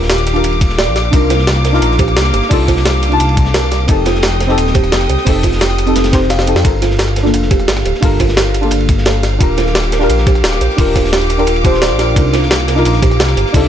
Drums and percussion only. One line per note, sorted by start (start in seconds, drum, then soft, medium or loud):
0.02 snare medium
0.10 snare loud
0.10 closed hi-hat medium
0.10 ride medium
0.18 closed hi-hat soft
0.27 closed hi-hat medium
0.27 ride medium
0.36 ride soft
0.44 closed hi-hat medium
0.44 ride medium
0.52 ride soft
0.61 kick loud
0.61 closed hi-hat medium
0.61 ride medium
0.70 snare soft
0.79 snare loud
0.79 closed hi-hat medium
0.79 ride medium
0.96 snare soft
0.96 closed hi-hat medium
0.96 ride medium
1.13 kick loud
1.13 closed hi-hat medium
1.13 ride medium
1.30 snare medium
1.30 closed hi-hat medium
1.30 ride medium
1.39 snare soft
1.47 snare loud
1.47 closed hi-hat medium
1.47 ride medium
1.56 cross-stick soft
1.64 snare soft
1.64 closed hi-hat medium
1.64 ride medium
1.74 snare soft
1.82 closed hi-hat medium
1.82 ride medium
1.91 snare soft
1.99 kick loud
1.99 closed hi-hat medium
1.99 ride medium
2.08 cross-stick soft
2.16 snare loud
2.16 closed hi-hat medium
2.16 ride medium
2.25 cross-stick soft
2.25 snare soft
2.34 closed hi-hat medium
2.34 ride medium
2.42 snare soft
2.51 kick loud
2.51 closed hi-hat medium
2.51 open hi-hat medium
2.68 kick medium
2.68 cross-stick soft
2.68 closed hi-hat medium
2.68 ride medium
2.77 snare medium
2.85 snare loud
2.85 closed hi-hat medium
2.85 ride medium
3.03 closed hi-hat medium
3.03 ride medium
3.12 ride soft
3.20 closed hi-hat medium
3.20 ride medium
3.29 ride soft
3.37 kick loud
3.37 closed hi-hat medium
3.37 ride medium
3.45 snare soft
3.54 snare loud
3.54 closed hi-hat medium
3.54 ride medium
3.71 snare soft
3.71 closed hi-hat medium
3.71 ride medium
3.88 kick loud
3.88 closed hi-hat medium
3.88 ride medium
4.06 snare medium
4.06 closed hi-hat medium
4.06 ride medium
4.15 snare soft
4.23 snare loud
4.23 closed hi-hat loud
4.23 ride loud
4.32 cross-stick soft
4.40 snare medium
4.40 closed hi-hat medium
4.40 ride medium
4.49 snare soft
4.58 closed hi-hat medium
4.58 ride medium
4.67 snare soft
4.74 kick loud
4.74 closed hi-hat medium
4.74 ride medium
4.84 cross-stick soft
4.92 snare loud
4.92 closed hi-hat medium
4.92 ride medium
5.01 cross-stick soft
5.01 snare soft
5.09 closed hi-hat medium
5.09 ride medium
5.17 snare soft
5.26 kick loud
5.26 closed hi-hat loud
5.26 open hi-hat medium
5.43 kick medium
5.43 cross-stick soft
5.43 closed hi-hat medium
5.43 ride medium
5.52 snare medium
5.61 snare loud
5.61 closed hi-hat loud
5.61 ride medium
5.70 cross-stick soft
5.78 closed hi-hat medium
5.78 ride medium
5.86 closed hi-hat soft
5.86 ride soft
5.96 snare loud
5.96 closed hi-hat loud
5.96 ride medium
6.04 snare loud
6.04 closed hi-hat soft
6.04 ride medium
6.13 kick medium
6.13 snare loud
6.13 closed hi-hat medium
6.13 ride medium
6.22 snare soft
6.30 snare medium
6.30 closed hi-hat loud
6.30 ride medium
6.39 snare medium
6.39 snare soft
6.47 closed hi-hat medium
6.47 ride medium
6.56 snare medium
6.65 kick loud
6.65 closed hi-hat loud
6.65 ride medium
6.82 snare medium
6.82 closed hi-hat medium
6.82 ride medium
6.91 snare soft
6.99 snare loud
6.99 closed hi-hat medium
6.99 ride medium
7.08 cross-stick soft
7.16 snare medium
7.16 closed hi-hat medium
7.16 ride medium
7.26 snare soft
7.34 closed hi-hat loud
7.34 ride medium
7.42 snare soft
7.51 kick loud
7.51 closed hi-hat medium
7.51 ride medium
7.60 cross-stick soft
7.68 snare loud
7.68 closed hi-hat medium
7.68 ride medium
7.77 cross-stick soft
7.77 snare soft
7.85 closed hi-hat medium
7.85 ride medium
7.95 snare soft
8.03 kick loud
8.03 closed hi-hat medium
8.03 open hi-hat medium
8.20 kick medium
8.20 cross-stick soft
8.20 closed hi-hat medium
8.20 ride medium
8.28 snare medium
8.37 snare loud
8.37 closed hi-hat medium
8.37 ride medium
8.54 closed hi-hat medium
8.54 ride medium
8.63 ride soft
8.71 closed hi-hat medium
8.71 ride medium
8.80 ride soft
8.89 kick loud
8.89 closed hi-hat medium
8.89 ride medium
8.98 snare soft
9.05 snare loud
9.05 closed hi-hat medium
9.05 ride medium
9.23 snare soft
9.23 closed hi-hat medium
9.23 ride medium
9.41 kick loud
9.41 closed hi-hat medium
9.41 ride medium
9.57 snare medium
9.57 closed hi-hat medium
9.57 ride medium
9.67 snare soft
9.75 snare loud
9.75 closed hi-hat medium
9.75 ride loud
9.84 cross-stick soft
9.92 snare medium
9.92 closed hi-hat medium
9.92 ride medium
10.00 snare soft
10.10 closed hi-hat medium
10.10 ride medium
10.18 snare soft
10.27 kick loud
10.27 closed hi-hat medium
10.27 ride medium
10.35 cross-stick soft
10.44 snare loud
10.44 closed hi-hat medium
10.44 ride medium
10.52 cross-stick soft
10.52 snare soft
10.61 closed hi-hat medium
10.61 ride medium
10.70 snare soft
10.78 kick loud
10.78 closed hi-hat medium
10.78 open hi-hat medium
10.96 kick medium
10.96 cross-stick soft
10.96 closed hi-hat medium
10.96 ride medium
11.04 snare medium
11.13 snare loud
11.13 closed hi-hat medium
11.13 ride medium
11.22 closed hi-hat soft
11.30 closed hi-hat medium
11.30 ride medium
11.39 ride soft
11.47 closed hi-hat medium
11.47 ride medium
11.56 ride soft
11.65 kick loud
11.65 closed hi-hat medium
11.65 ride medium
11.74 snare soft
11.82 snare loud
11.82 closed hi-hat medium
11.82 ride medium
11.99 snare soft
11.99 closed hi-hat medium
11.99 ride medium
12.16 kick loud
12.16 closed hi-hat medium
12.16 ride medium
12.34 snare medium
12.34 closed hi-hat medium
12.34 ride medium
12.42 snare soft
12.51 snare loud
12.51 closed hi-hat medium
12.51 ride medium
12.59 cross-stick soft
12.68 snare medium
12.68 closed hi-hat medium
12.68 ride medium
12.77 snare soft
12.85 closed hi-hat medium
12.85 ride medium
12.93 snare soft
13.03 kick loud
13.03 closed hi-hat medium
13.03 ride medium
13.11 cross-stick soft
13.20 snare loud
13.20 closed hi-hat medium
13.20 ride medium
13.28 cross-stick soft
13.28 snare soft
13.37 closed hi-hat medium
13.37 ride medium
13.46 snare soft
13.54 kick loud
13.54 closed hi-hat medium
13.54 open hi-hat medium